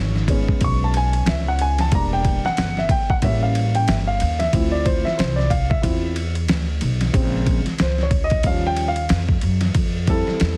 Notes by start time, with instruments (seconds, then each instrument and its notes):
Already playing: upright bass G#1, grand piano C#5
0.16 snare
0.28 grand piano G#3 B3 C#4, kick, ride
0.48 muted upright bass stroke, kick
0.61 upright bass B1, grand piano C#6, kick, ride
0.84 grand piano A5
0.94 grand piano G#5, ride
1.13 ride
1.26 upright bass C#2, grand piano E5, snare, hi-hat pedal, ride
1.48 grand piano F#5
1.59 grand piano G#5, ride
1.78 grand piano A5, snare, ride
1.92 upright bass E1, grand piano G3 A#3 D4 A#5, kick, ride
2.13 grand piano G5
2.25 kick, ride
2.44 grand piano F#5, muted upright bass stroke, snare
2.57 upright bass G1, snare, hi-hat pedal, ride
2.77 grand piano E5, snare
2.89 grand piano G5, kick, ride
3.10 grand piano F#5, kick
3.22 upright bass A1, grand piano G3 A#3 C#4 E5, kick, ride
3.43 grand piano F5
3.55 ride
3.75 grand piano G5, ride
3.88 upright bass G1, grand piano E5, snare, hi-hat pedal, ride
4.07 grand piano F5
4.20 upright bass D#2, ride
4.39 grand piano E5, snare, ride
4.53 upright bass D2, grand piano F3 C4 E4, kick, ride
4.72 grand piano D5
4.85 grand piano C5, kick, ride
5.05 grand piano E5, muted upright bass stroke, snare
5.18 upright bass C2, grand piano C5, snare, hi-hat pedal, ride
5.36 grand piano D5, snare
5.50 grand piano F5, kick, ride
5.70 grand piano E5, muted upright bass stroke, kick
5.82 upright bass E2, grand piano C4 E4 F4, kick, ride
6.16 ride
6.35 ride
6.48 upright bass D2, snare, hi-hat pedal, ride
6.81 upright bass B1, ride
7.01 snare, ride
7.13 upright bass A#1, grand piano C#3 G#3 C4, kick, ride
7.46 kick, ride
7.66 muted upright bass stroke, snare, ride
7.78 upright bass C#2, grand piano C5, snare, hi-hat pedal, ride
7.98 snare
8.03 grand piano C#5
8.11 kick, ride
8.24 grand piano D#5
8.30 kick, ride
8.43 upright bass D#2, grand piano F3 G3 C#4 F5, kick, ride
8.67 grand piano G5
8.77 ride
8.88 grand piano F5
8.96 ride
9.09 upright bass F2, snare, hi-hat pedal, ride
9.29 kick
9.41 upright bass F#2, ride
9.61 snare, ride
9.74 upright bass F2, kick, ride
10.07 grand piano G3 C4 E4 A4, kick, ride
10.27 muted upright bass stroke, snare
10.40 upright bass E2, snare, hi-hat pedal, ride